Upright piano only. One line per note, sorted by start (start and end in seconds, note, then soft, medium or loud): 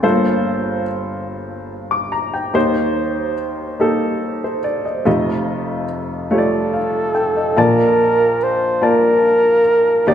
0.03 2.51 G1 medium
0.03 2.51 G2 medium
0.03 0.10 A3 medium
0.03 0.82 F4 medium
0.03 0.83 A4 medium
0.03 0.83 C5 medium
0.09 0.86 A#3 medium
1.91 2.12 D6 medium
2.12 2.33 A#5 medium
2.34 2.74 G5 medium
2.54 5.02 D#2 medium
2.54 5.02 D#3 medium
2.54 3.34 A#3 medium
2.54 3.34 D#4 medium
2.54 3.34 G4 medium
2.54 3.34 C5 medium
3.80 4.59 A#3 medium
3.80 4.59 D#4 medium
3.80 4.60 G4 medium
3.80 4.60 A4 medium
4.44 4.64 C5 soft
4.64 4.84 D5 medium
4.85 5.05 D#5 soft
5.05 7.53 F1 medium
5.05 7.53 F2 medium
5.05 5.85 A3 medium
5.05 5.85 F4 medium
5.05 5.85 G4 medium
5.05 5.85 D#5 medium
6.31 7.10 A3 medium
6.31 7.10 F4 medium
6.31 7.10 G4 medium
6.31 6.38 C#5 medium
6.38 6.77 D5 medium
6.74 7.13 F5 soft
7.15 7.35 G5 soft
7.36 7.76 D#5 soft
7.56 10.03 A#1 medium
7.56 10.03 A#2 medium
7.56 8.35 A#3 medium
7.56 8.35 F4 medium
7.56 8.36 D5 medium
7.56 8.36 A5 medium
8.82 9.60 A#3 medium
8.82 9.60 F4 medium
8.82 9.61 D5 medium
8.82 9.61 A5 medium
10.07 10.14 D#2 medium
10.07 10.14 D#3 medium
10.07 10.14 A#3 medium
10.07 10.14 D#4 medium
10.07 10.14 G4 medium
10.07 10.14 D5 medium